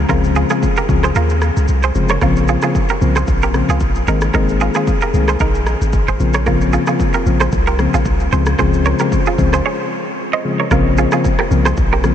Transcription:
0.09 C#2 C#3 F3 G#3 C4 F4 A#4, kick, cross-stick, shaker
0.24 shaker
0.35 F4 G#4, shaker
0.50 C#3 F3 G#3 C4 F4 G#4, cross-stick, shaker
0.63 kick, shaker
0.76 G4 A#4, shaker
0.89 C#2 C#3 F3 G#3 C4, kick, shaker
1.03 G#4 C5, cross-stick, shaker
1.15 D#2 F4 A#4, shaker
1.30 shaker
1.41 cross-stick, shaker
1.57 C#2, shaker
1.68 C2, shaker
1.83 G#4 C5, shaker
1.95 F1 C#3 F3 G#3 C4, shaker
2.09 A#4 C#5, cross-stick, shaker
2.21 A#1 C#3 F3 A#3 C4 F4 A#4, kick, cross-stick, shaker
2.36 shaker
2.48 F4 G#4, shaker
2.62 C#3 F3 A#3 C4 F4 G#4, cross-stick, shaker
2.75 kick, shaker
2.89 G4 A#4, shaker
3.01 C2 C#3 F3 A#3 C4, shaker
3.16 G#4 C5, cross-stick, shaker
3.27 A#1, kick, shaker
3.42 G4 A#4, shaker
3.54 C#3 F3 A#3 C4, cross-stick, shaker
3.69 C#2 F4 G#4, shaker
3.80 A#1, kick, shaker
3.95 shaker
4.07 G#1 D#3 G#3 A#3 C4 D#4 A#4, shaker
4.21 cross-stick, shaker
4.34 G#1 D#3 G#3 A#3 C4 D#4 A#4, kick, cross-stick, shaker
4.49 shaker
4.60 F4 G#4, shaker
4.75 D#3 G#3 A#3 C4 F4 G#4, cross-stick, shaker
4.87 kick, shaker
5.01 G4 A#4, shaker
5.14 C2 D#3 G#3 A#3 C4, shaker
5.28 G#4 C5, cross-stick, shaker
5.40 A#1 D#4 A#4, kick, shaker
5.55 shaker
5.66 cross-stick, shaker
5.81 G#1, shaker
5.93 kick, shaker
6.08 G#1 G#4 C5, shaker
6.20 A#1 C#3 F3 A#3 C4, shaker
6.34 A#4 C#5, cross-stick, shaker
6.46 C#3 F3 A#3 C4 F4 A#4, kick, cross-stick, shaker
6.61 shaker
6.73 F4 G#4, shaker
6.87 C#3 F3 A#3 C4 F4 G#4, cross-stick, shaker
7.00 kick, shaker
7.13 G4 A#4, shaker
7.26 A#1 C#3 F3 A#3 C4, shaker
7.40 G#4 C5, cross-stick, shaker
7.52 C2, kick, shaker
7.67 G4 A#4, shaker
7.79 C#3 F3 A#3 C4, cross-stick, shaker
7.94 A#1 F4 G#4, shaker
8.05 C2, kick, shaker
8.20 shaker
8.32 C#2 C#3 F3 G#3 C4 G#4 C5, shaker
8.46 cross-stick, shaker
8.59 C#2 C#3 F3 G#3 C4 G#4 C5, kick, cross-stick, shaker
8.73 shaker
8.85 A#4 C#5, shaker
8.99 C#3 F3 G#3 C4 G4 A#4, cross-stick, shaker
9.12 kick, shaker
9.26 F4 G#4, shaker
9.38 C#2 C#3 F3 G#3 C4, kick, shaker
9.53 G#4 C5, cross-stick, shaker
9.66 G#4 C#5
10.33 C5 D#5
10.45 C#3 F3 G#3 C4
10.60 A#4 C#5
10.71 A#1 C#3 F3 A#3 C4 F4 A#4, kick, cross-stick, shaker
10.97 F4 G#4, shaker
11.12 C#3 F3 A#3 C4 F4 G#4, cross-stick, shaker
11.24 kick, shaker
11.39 G4 A#4, cross-stick
11.50 C2 C#3 F3 A#3 C4, shaker
11.65 G#4 C5, cross-stick, shaker
11.77 A#1, kick, shaker
11.93 G4 A#4
12.04 C#3 F3 A#3 C4, cross-stick, shaker

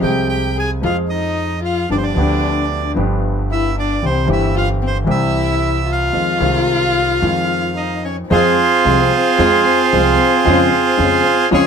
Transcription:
0.00 C2 C3 F3 G#3 C4 G4 G#4 G5
0.29 G4 G5
0.57 G#4 G#5
0.82 F2 F3 G#3 C4 F4 F5
0.86 G#4
1.10 D#4 D#5
1.63 F4 F5
1.90 G1 G2 F3 B3 D4 G4 D5
1.98 C4 C5
2.04 D4 D5
2.15 D2 D3 F3 B3 D4 G4
2.95 G1 G2 F3 B3 D4 G4
3.51 E4 E5
3.79 D4 D5
4.02 C2 C3 E3 G3 C4 G4 C5
4.25 G1 G2 E3 G3 C4
4.30 E4 G4 E5
4.56 F4 F5
4.82 C4
4.87 C5
5.04 C2 C3 E3 G3 C4 G4
5.10 E4 E5
5.89 F4 F5
6.13 F2 D#3 F3 G#3 C4 F4
6.38 C2 C3 D#3 G#3 C4
6.42 F4
7.20 F2 D#3 F3 G#3 C4 F4
7.77 D#4 D#5
8.04 C#4 C#5
8.30 F2 F3 G#3 C4 F4 G#4 C5
8.85 C2 C3 F3 G#3 C4 F4 G#4
9.38 F2 F3 G#3 C4 F4 G#4
9.93 C2 C3 F3 G#3 C4 F4 G#4
10.45 F2 C#3 F3 G#3 C4 C#4 F4
10.97 F2 C#3 F3 G#3 C4 C#4 F4
11.51 F2 C#3 F3 G#3 C4 C#4 F4 G#4 C#5

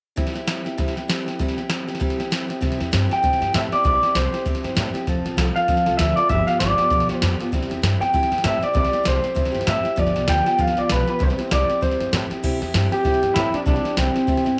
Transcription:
0.16 C3 G3 C4 E4 G4, kick, snare
0.27 snare
0.33 C4 E4 G4, snare
0.47 G3 C4 E4 G4, snare, hi-hat pedal
0.65 C4 E4 G4, snare
0.78 C3 G3 C4 E4 G4, kick, snare
0.88 snare
0.96 C4 E4 G4, snare
1.08 G3 C4 E4 G4, snare, hi-hat pedal
1.26 C4 E4 G4, snare
1.39 C3 G3 C4 E4 G4, kick, snare
1.48 snare
1.57 C4 E4 G4, snare
1.69 G3 C4 E4 G4, snare, hi-hat pedal
1.87 C4 E4 G4, snare
1.95 snare
1.99 C3 G3 C4 E4 G4, kick, snare
2.10 snare
2.18 C4 E4 G4, snare
2.30 G3 C4 E4 G4, snare, hi-hat pedal
2.48 C4 E4 G4, snare
2.61 C2 C3 G3 C4 E4 G4, kick, snare
2.72 snare
2.79 E2 C4 E4 G4, snare
2.92 G2 G3 C4 E4 G4, snare, hi-hat pedal
3.09 C4 E4 G4 G5, muted upright bass stroke, snare
3.23 A2 C3 G3 C4 E4 G4, kick, snare
3.33 snare
3.40 G2 C4 E4 G4, snare
3.53 A2 G3 C4 E4 G4 E5, snare, hi-hat pedal
3.72 C4 E4 G4 D5, muted upright bass stroke, snare
3.84 C2 C3 G3 C4 E4 G4 D5, kick, snare
4.02 C4 E4 G4, muted upright bass stroke, snare
4.14 C2 G3 C4 E4 G4 C5, snare, hi-hat pedal
4.32 C4 E4 G4, snare
4.45 E2 C3 G3 C4 E4 G4, kick, snare
4.55 snare
4.63 G2 C4 E4 G4, snare
4.75 A2 G3 C4 E4 G4, snare, hi-hat pedal
4.94 C4 E4 G4, muted upright bass stroke, snare
5.07 F1 F3 C4 F4 A4, kick, snare
5.25 A1 C4 F4 A4, snare
5.37 C2 F3 C4 F4 A4, snare, hi-hat pedal
5.55 C4 F4 A4 F5, snare
5.68 D2 F3 C4 F4 A4, kick, snare
5.77 snare
5.86 C2 C4 F4 A4, snare
5.97 D2 F3 C4 F4 E5, snare, hi-hat pedal
6.01 A4
6.16 F4 A4 D5, muted upright bass stroke, snare
6.20 C4
6.29 G1 G2 D3 F3 B3 F4 G4 E5, kick, snare
6.47 F3 B3 F4 G4 F5, snare
6.59 G1 F3 B3 F4 G4 D5, snare, hi-hat pedal
6.78 F3 B3 F4 G4, snare
6.90 B1 G2 D3 F3 B3 F4 G4, kick, snare
7.00 snare
7.09 D2 F3 B3 F4 G4, snare
7.15 C5
7.22 F2 F3 B3 F4 G4, snare, hi-hat pedal
7.40 F3 B3 F4 G4, snare
7.52 C2 C3 G3 C4 E4 G4, kick, snare
7.63 snare
7.70 E2 C4 E4 G4, snare
7.82 G2 G3 C4 E4 G4, snare, hi-hat pedal
8.01 C4 E4 G4 G5, muted upright bass stroke, snare
8.13 A2 C3 G3 C4 E4 G4, kick, snare
8.23 snare
8.30 G2 C4 E4 G4, snare
8.38 snare
8.43 A2 G3 C4 E4 G4 E5, snare, hi-hat pedal
8.61 C4 E4 G4 D5, muted upright bass stroke, snare
8.74 C2 C3 G3 C4 E4 G4 D5, kick, snare
8.85 snare
8.92 C4 E4 G4, snare
9.03 C2 G3 C4 E4 G4, snare, hi-hat pedal
9.08 C5
9.22 C4 E4 G4, snare
9.35 E2 C3 G3 C4 E4 G4, kick, snare
9.45 snare
9.52 G2 C4 E4 G4, snare
9.61 snare
9.65 A2 G3 C4 E4 E5, snare, hi-hat pedal
9.83 C4 E4 G4, muted upright bass stroke, snare
9.96 G1 G2 D3 F3 B3 F4 G4 D5, kick, snare
10.07 snare
10.14 B1 F3 B3 F4 G4, snare
10.26 D2 F3 B3 F4 G4 G5, snare, hi-hat pedal
10.44 F3 B3 F4 G4 G5, snare
10.58 F2 G2 D3 F3 B3 F4 G4 F5, kick, snare
10.68 snare
10.76 D2 F3 B3 F4 G4 D5, snare
10.88 B1 F3 B3 F4 G4 B4, snare, hi-hat pedal
11.06 F3 B3 F4 G4 B4, snare
11.19 C2 C3 G3 C4 E4 G4 C5, kick, snare
11.30 snare
11.38 C4 E4 G4, snare
11.50 C2 G3 C4 E4 G4 D5, snare, hi-hat pedal
11.68 C4 E4 G4, muted upright bass stroke, snare
11.81 E2 C3 G3 C4 E4 G4 C5, kick, snare
11.91 snare
11.99 G2 C4 E4 G4, snare
12.12 A2 G3 C4 E4 G4, snare, hi-hat pedal
12.30 C4 E4 G4, muted upright bass stroke, snare
12.43 C2 C3 G3 C4 E4 G4, kick, snare, crash
12.60 E2 C4 E4 G4, snare
12.73 G2 G3 C4 E4 G4, snare, hi-hat pedal
12.91 C4 E4 G4, muted upright bass stroke, snare
13.04 A2 C3 G3 C4 E4 G4, kick, snare
13.14 snare
13.22 G2 C4 E4 G4, snare
13.34 A2 G3 C4 E4 G4, snare, hi-hat pedal
13.52 C4 D4 E4 G4, muted upright bass stroke, snare
13.66 C2 C3 G3 C4 D4 E4 G4, kick, snare
13.76 snare
13.83 C4 E4 G4, muted upright bass stroke, snare
13.96 C2 G3 C4 E4 G4, snare, hi-hat pedal
14.14 C4 E4 G4, snare
14.27 E2 C3 G3 C4 E4 G4, kick, snare
14.37 snare
14.45 G2 C4 E4 G4, snare

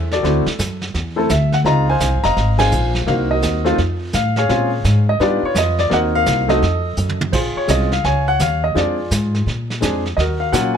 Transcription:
Already playing: E2
0.11 F#4 A4 D5, snare
0.23 D2 A3 C4 E4 F#4, brush sweep, snare
0.46 muted upright bass stroke, snare
0.59 F#2, snare, hi-hat pedal
0.82 snare
0.94 E2, brush sweep, snare
1.16 A3 C4 E4 A4
1.29 D2 E5, snare, hi-hat pedal
1.52 F#5, snare
1.64 C#2 G#3 C4 D#4 F4 D#5 F5 A#5, brush sweep, snare
1.90 C5 F5 G#5
2.00 C2, snare, hi-hat pedal
2.13 G#1
2.24 F1 D#5 F5 A#5, snare
2.37 G#1, brush sweep, snare
2.58 G#3 C4 D#4 G#4 C5 F5 G#5, snare, ride
2.72 A#1, hi-hat pedal
2.95 snare
3.07 C2 A#3 C4 D#4 F#4 A#4 F5, brush sweep, snare
3.31 F#4 A#4 D#5
3.42 D#2, snare, hi-hat pedal
3.65 A3 C4 D#4 F4, snare
3.78 F2, brush sweep, snare
4.13 A2 F5, snare, hi-hat pedal
4.36 G#4 C#5 F5, snare
4.49 A#2 G#3 C4 C#4 F4, brush sweep, snare
4.84 G#2, snare, hi-hat pedal
5.09 D#5
5.20 G2 B3 D4 D#4 F4 G4 B4 D5, brush sweep, snare
5.43 C#5, muted upright bass stroke
5.55 F2 D#5, snare, hi-hat pedal
5.79 D5, snare
5.90 D#2 A#3 C4 D#4 F#4 A#4 D#5 F#5, brush sweep, snare
6.15 A#4 F5
6.26 C2, snare, hi-hat pedal
6.48 A3 C4 D#4 F#4 A4 D#5, snare
6.62 F2, brush sweep, snare
6.97 F#2, hi-hat pedal
7.09 high tom
7.21 high tom
7.33 A#1 F4 G#4 C5, brush sweep, kick, snare, crash
7.55 C#5, muted upright bass stroke
7.67 C2 G#3 C4 C#4 F4 D#5, snare, hi-hat pedal
7.92 F5, snare
8.04 C#2 C#5 F5 G#5, brush sweep, snare
8.28 F#5
8.39 D#2 F5, snare, hi-hat pedal
8.64 D#5
8.74 F2 G#3 C4 D4 F4 D5, brush sweep, snare
8.79 F4 G#4
9.11 G#2, snare, hi-hat pedal
9.35 snare
9.46 A#2, brush sweep, snare
9.70 snare
9.81 F2 G#3 C4 D4 G#4, snare, hi-hat pedal
10.06 snare
10.17 D#2 F#4 A#4 D#5, brush sweep, snare
10.40 F5
10.52 A#2 F#3 A#3 C#4 F4 F#5, snare, hi-hat pedal

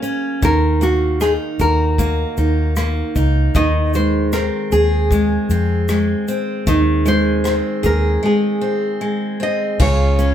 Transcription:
Already playing: F#3 A#3 G#4
0.02 C#4, shaker
0.42 D#2 D#3 A#4, kick, shaker
0.81 A#3 F#4, shaker
1.21 D#4 G#4, cross-stick, shaker
1.59 D#2 F#4 A#4, kick, shaker
1.98 A#3, kick, shaker
2.37 D#2 D#4, shaker
2.76 A#3, cross-stick, shaker
3.16 C#2 D#4, kick, shaker
3.55 D#2 D#3 D#5, kick, shaker
3.94 G#3 C5, shaker
4.33 C4 A#4, cross-stick, shaker
4.72 D#2 G#4, shaker
5.11 G#3, kick, shaker
5.49 F2 C4, shaker
5.88 G#3, cross-stick, shaker
6.28 C4, shaker
6.67 D#2 D#3 D#4, kick, shaker
7.06 G#3 C5, shaker
7.44 C4, cross-stick, shaker
7.83 D#2 G#4 A#4, kick, shaker
8.23 G#3 G#4
8.61 C4
9.01 G#3
9.40 C4 D#5
9.80 C#2 C#3 F4 C#5, kick, crash
10.19 C#4, shaker

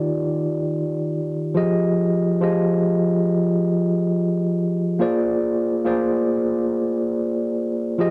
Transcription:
Already playing: D#3 D#4 F4 G4 D5
1.54 F3 F4 G4 G#4 D#5
2.41 F3 F4 G4 G#4 D#5
4.99 A#3 F4 G#4 C5 D5
5.84 A#3 F4 G#4 C5 D5
7.98 F3 F4 G4 G#4 D#5

